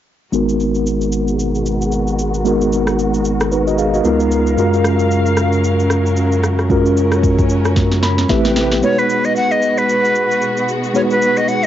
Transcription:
0.32 sub bass G#1, string section B2 G#3 F#4 A#4, tine electric piano G#3 B3 D#4 F#4 A#4, shaker
0.49 shaker
0.60 shaker
0.75 shaker
0.86 shaker
1.01 shaker
1.12 shaker
1.28 shaker
1.39 shaker
1.55 shaker
1.66 shaker
1.81 shaker
1.92 shaker
2.07 shaker
2.19 shaker
2.34 shaker
2.45 tine electric piano G#3 B3 D#4 F#4 A#4, shaker
2.61 shaker
2.72 shaker
2.87 cross-stick, shaker
2.99 shaker
3.14 shaker
3.25 shaker
3.40 cross-stick, shaker
3.52 tine electric piano D#4 B4, shaker
3.67 tine electric piano F#4 D#5, shaker
3.78 tine electric piano G#4 F5, shaker
3.94 tine electric piano F#4 D#5, shaker
4.04 sub bass C#2, string section D#3 B3 F5, tine electric piano G#3 B3 D#4 F4 A#4, shaker
4.20 shaker
4.31 shaker
4.47 shaker
4.57 sub bass F#2, string section C#3 F#3, tine electric piano G#3 C#4 F4 F#4 A#4, shaker
4.73 shaker
4.84 cross-stick, shaker
4.99 shaker
5.11 shaker
5.26 shaker
5.37 cross-stick, shaker
5.52 shaker
5.64 shaker
5.80 shaker
5.90 cross-stick, shaker
6.06 shaker
6.17 shaker
6.32 shaker
6.43 cross-stick, shaker
6.59 cross-stick, shaker
6.69 tine electric piano G#3 C#4 F4 F#4 A#4, string section C#4, kick, shaker
6.86 shaker
6.97 shaker
7.12 cross-stick, shaker
7.23 kick, shaker
7.38 kick, shaker
7.49 shaker
7.65 cross-stick, shaker
7.76 kick, snare, shaker
7.92 snare, shaker
8.03 tine electric piano B5, snare, shaker
8.18 snare, shaker
8.29 sub bass A1, string section C3 A3 G4 B4, tine electric piano A3 C4 E4 G4 B4 E5, kick, snare, shaker
8.45 snare, shaker
8.56 snare, shaker
8.71 snare, shaker
8.82 string section B2 G#3 B3 F#4, tine electric piano G#3 B3 D#4 F#4 B4, flute C#5, shaker
8.98 flute B4, shaker
9.09 shaker
9.24 flute D#5, shaker
9.36 flute F#5, shaker
9.51 flute D#5, shaker
9.62 shaker
9.77 flute B4, shaker
9.89 shaker
10.05 shaker
10.15 shaker
10.31 shaker
10.42 shaker
10.57 shaker
10.68 shaker
10.84 shaker
10.94 tine electric piano G#3 B3 D#4 F#4 B4, flute C#5, shaker
11.11 flute B4, shaker
11.22 shaker
11.37 flute D#5, shaker
11.48 flute F#5, shaker
11.63 shaker

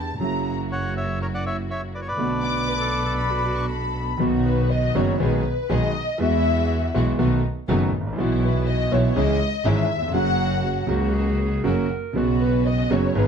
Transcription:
Already playing: double bass E2, grand piano E2 D3 E3 G3 B3 E4, string section D4 E4 G4, violin section A5
0.20 double bass F#1, grand piano F#2 C#3 F#3 A#3 E4, string section A#3 E4 F#4, violin section A#5
0.72 bandoneon C#5 F#5
0.97 bandoneon C#5 E5
1.22 bandoneon A#4 C#5
1.34 bandoneon D5 F#5
1.46 bandoneon C#5 E5
1.71 bandoneon C#5 E5
1.95 bandoneon B4 D5
2.02 bandoneon C#5
2.08 bandoneon B4 D5
2.16 double bass B1, grand piano B1 B2 D3 A3 B3, string section B3 D4 A4
2.20 grand piano F#4
2.43 violin section D6
2.68 clarinet B4
2.80 clarinet A4
3.05 clarinet A4
3.18 violin section B5
3.31 clarinet F#4
3.45 clarinet F#4
3.56 violin section C#6
3.68 violin section B5
4.18 grand piano B1 B2 D#3 F#3 B3, double bass B1, string section B3 D#4 F#4
4.22 grand piano F#4
4.45 violin section B4
4.70 violin section D#5
4.95 double bass F#1, grand piano F#1 F#2 D#3 F#3 B3 F#4, string section B3 D#4 F#4, violin section C#5
5.20 double bass B1, grand piano B1 B2 D#3 G#3 B3 G#4, string section B3 D#4 G#4, violin section B4
5.69 grand piano B1 B2 D#3 G#3 B3 G#4, double bass B1, string section B3 D#4 G#4, violin section D#5
6.18 grand piano E2 E3 G#3 B3 F#4, double bass E2, string section G#3 E4 F#4, violin section E5
6.94 grand piano B1 B2 E3 G#3 B3 F#4, double bass B1, string section G#3 E4 F#4
7.19 grand piano B1 B2 D#3 A3 B3 F#4, double bass B1, string section A3 B3 D#4
7.68 double bass F#1, grand piano F#1 F#2 D#3 A3 B3 F#4, string section A3 B3 D#4
7.94 double bass A1
8.01 grand piano G#1
8.07 grand piano A1
8.13 grand piano A#1 E3
8.17 grand piano B1 B2 F#3 B3 F#4, double bass B1, string section F#3 B3 E4
8.43 violin section B4
8.67 violin section D#5
8.91 double bass B1, grand piano B1 B2 E3 F#3 B3 F#4, string section F#3 B3 E4, violin section C#5
9.15 double bass C#2, grand piano C#2 C#3 E3 G#3 C#4 G#4, string section G#3 C#4 E4, violin section D#5
9.64 double bass G#1, grand piano G#1 G#2 E3 G#3 C#4 G#4, string section G#3 C#4 E4, violin section E5
9.96 grand piano D#2
10.02 grand piano E2
10.08 grand piano F2
10.12 double bass F#1, grand piano F#2 C#3 F#3 A#3, string section A#3 C#4 F#4, violin section F#5
10.16 grand piano F#4
10.64 clarinet F#4
10.87 double bass C#2, grand piano C#2 C#3 F#3 A#3 F#4, string section A#3 C#4 F#4
11.13 clarinet G#4
11.64 double bass F#1, grand piano F#2 C#3 F#3 A#3 F#4, string section A#3 C#4 F#4, clarinet A#4
12.13 double bass B1, grand piano B1 B2 C#3 F#3 B3, string section B3 C#4 F#4
12.17 grand piano F#4
12.41 violin section B4
12.67 violin section D#5
12.90 double bass F#1, grand piano F#1 F#2 C#3 F#3 B3 F#4, string section B3 C#4 F#4, violin section C#5
13.15 double bass G#1, grand piano G#1 G#2 D#3 G#3 B3 G#4, string section B3 D#4 G#4, violin section B4

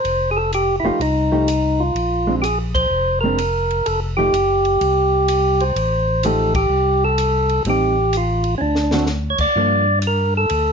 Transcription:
Already playing: tonewheel organ C5
0.04 tonewheel organ F1, ride
0.31 tonewheel organ G#4
0.37 tonewheel organ A4
0.53 tonewheel organ G4, hi-hat pedal, ride
0.80 tonewheel organ F1 E4
0.85 hollow-body jazz guitar F3 A3 D#4 G4, tonewheel organ F4
1.00 tonewheel organ C2 D#4, ride
1.32 hollow-body jazz guitar F3 A3 D#4 G4
1.48 hi-hat pedal, ride
1.80 tonewheel organ F4
1.95 tonewheel organ A#1, ride
2.27 hollow-body jazz guitar G#3 C4 D4
2.42 tonewheel organ G4 G#4, hi-hat pedal, ride
2.75 tonewheel organ C5, kick, ride
2.90 tonewheel organ F1
3.21 hollow-body jazz guitar G#3 C4, tonewheel organ A#4
3.25 hollow-body jazz guitar D4
3.38 hi-hat pedal, ride
3.71 ride
3.86 tonewheel organ F1 A4, ride
4.17 hollow-body jazz guitar F3 A3 D#4 G4, tonewheel organ G4
4.33 tonewheel organ F#1, hi-hat pedal, ride
4.65 ride
4.81 tonewheel organ C2, ride
5.28 hi-hat pedal, ride
5.60 tonewheel organ C5, ride
5.76 tonewheel organ A1, ride
6.23 hollow-body jazz guitar F3 A3 D#4 G4, tonewheel organ A4, hi-hat pedal, ride
6.55 tonewheel organ G4, kick, ride
6.69 tonewheel organ C2
7.05 tonewheel organ A4
7.18 hi-hat pedal, ride
7.49 ride
7.65 tonewheel organ A1, hollow-body jazz guitar G3 C4 D#4, ride
7.70 tonewheel organ G4
8.13 hi-hat pedal, ride
8.17 tonewheel organ F4
8.44 ride
8.58 tonewheel organ D2 C#4 D4
8.75 snare
8.91 hollow-body jazz guitar D3 A3 C4 F#4, snare
9.06 snare, hi-hat pedal
9.30 tonewheel organ C#5
9.38 tonewheel organ D2 D5, kick, crash
9.55 tonewheel organ G2, hollow-body jazz guitar F3 A#3 D4
10.02 hi-hat pedal, ride
10.07 tonewheel organ A#4
10.37 tonewheel organ A4
10.50 tonewheel organ D2, ride

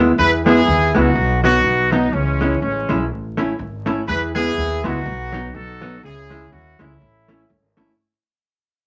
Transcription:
Already playing: upright bass D#2, hollow-body jazz guitar G#3 B3
0.00 hollow-body jazz guitar E4
0.18 upright bass E2, horn section E4 G#4 B4
0.45 hollow-body jazz guitar G#3 B3 E4, horn section B3 E4 G#4
0.67 upright bass D#2
0.94 upright bass C#2, hollow-body jazz guitar G#3 B3 E4, horn section B3 D#4 F#4
1.15 upright bass B1
1.43 hollow-body jazz guitar F#3 B3 D#4, horn section B3 D#4 F#4
1.64 upright bass B1
1.91 hollow-body jazz guitar F#3 B3 D#4, horn section D#4
2.13 upright bass C#2, horn section E3 G#3 C#4
2.41 hollow-body jazz guitar G#3 C#4 E4
2.62 upright bass A1, horn section E3 G#3 C#4
2.89 upright bass B1, hollow-body jazz guitar G#3 C#4 E4
3.10 upright bass A1
3.37 hollow-body jazz guitar A3 C#4 E4
3.59 upright bass G#1, muted hollow-body jazz guitar stroke
3.86 hollow-body jazz guitar A3 C#4 E4
4.08 upright bass E2, horn section E4 G#4 B4
4.35 hollow-body jazz guitar G#3 B3 E4, horn section B3 E4 G#4
4.57 upright bass D#2
4.84 upright bass C#2, hollow-body jazz guitar G#3 B3 E4, horn section B3 D#4 F#4
5.06 upright bass B1
5.33 hollow-body jazz guitar F#3 B3 D#4
5.54 upright bass B1, horn section D#4 F#4 A4
5.81 hollow-body jazz guitar F#3 B3 D#4
6.03 upright bass C#2, horn section C#4 E4 G#4
6.30 hollow-body jazz guitar G#3 C#4 E4
6.52 upright bass D#2, horn section F#4
6.79 upright bass C#2, hollow-body jazz guitar G#3 C#4 E4, horn section A3 C#4 E4
7.01 upright bass A1
7.28 hollow-body jazz guitar A3 C#4 E4
7.49 upright bass G#1, muted hollow-body jazz guitar stroke
7.77 hollow-body jazz guitar A3 C#4 E4

